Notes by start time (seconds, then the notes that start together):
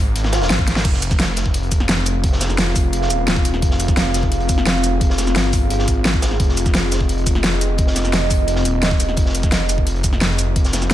0.00 G#1
0.16 G#1, closed hi-hat, swell
0.24 snare
0.32 snare, closed hi-hat
0.41 snare, closed hi-hat
0.50 G#1, snare, closed hi-hat
0.59 kick
0.67 snare, closed hi-hat
0.76 snare, closed hi-hat
0.84 F1 C4 F4 G#4 F5, kick, closed hi-hat, crash
0.93 snare
1.02 closed hi-hat, shaker
1.11 kick, snare, shaker
1.20 snare, closed hi-hat
1.36 snare, closed hi-hat, shaker
1.46 kick
1.54 closed hi-hat
1.63 closed hi-hat
1.72 F1, kick, closed hi-hat, shaker
1.80 snare
1.89 snare, closed hi-hat
2.06 closed hi-hat, shaker
2.24 kick, closed hi-hat
2.32 snare
2.41 snare, closed hi-hat, shaker
2.50 snare, shaker
2.58 F1, snare, closed hi-hat
2.76 kick, closed hi-hat, open hi-hat, shaker
2.93 closed hi-hat
3.02 snare
3.10 D#1, closed hi-hat, shaker
3.27 snare, closed hi-hat
3.36 kick
3.45 closed hi-hat, shaker
3.54 snare
3.62 F1, kick, closed hi-hat
3.71 snare
3.80 closed hi-hat, shaker
3.88 kick, snare, shaker
3.97 snare, closed hi-hat
4.14 snare, closed hi-hat, shaker
4.23 kick
4.32 closed hi-hat
4.40 closed hi-hat
4.49 F1, kick, closed hi-hat, shaker
4.58 snare
4.66 snare, closed hi-hat
4.84 closed hi-hat, shaker
5.01 kick, closed hi-hat
5.10 snare
5.18 snare, closed hi-hat, shaker
5.27 snare, shaker
5.36 G1, snare, closed hi-hat
5.53 kick, closed hi-hat, open hi-hat, shaker
5.70 closed hi-hat
5.79 snare
5.88 G#1, kick, closed hi-hat, shaker
6.05 snare, closed hi-hat
6.14 kick
6.22 snare, closed hi-hat, shaker
6.31 snare
6.40 F1 D#5, kick, closed hi-hat
6.49 snare
6.57 closed hi-hat, shaker
6.66 kick, snare, shaker
6.74 snare, closed hi-hat
6.92 snare, closed hi-hat, shaker
7.01 kick
7.09 closed hi-hat
7.18 closed hi-hat
7.26 F1, kick, closed hi-hat, shaker
7.35 snare
7.43 snare, closed hi-hat
7.61 closed hi-hat, shaker
7.78 kick, closed hi-hat
7.87 snare
7.96 snare, closed hi-hat, shaker
8.05 snare, shaker
8.13 F1, snare, closed hi-hat
8.30 kick, closed hi-hat, open hi-hat, shaker
8.48 closed hi-hat
8.56 snare
8.65 D#1, closed hi-hat, shaker
8.83 snare, closed hi-hat
8.91 kick
9.00 closed hi-hat, shaker
9.09 snare
9.17 F1, kick, closed hi-hat
9.26 snare
9.34 closed hi-hat, shaker
9.43 kick, snare, shaker
9.52 snare, closed hi-hat
9.69 closed hi-hat, shaker
9.78 kick
9.87 closed hi-hat
9.96 closed hi-hat
10.03 F1, kick, closed hi-hat, shaker
10.13 snare
10.21 snare, closed hi-hat
10.39 closed hi-hat, shaker
10.56 kick, closed hi-hat
10.65 snare, shaker
10.73 snare, closed hi-hat, shaker
10.82 snare, shaker
10.91 F1, snare, closed hi-hat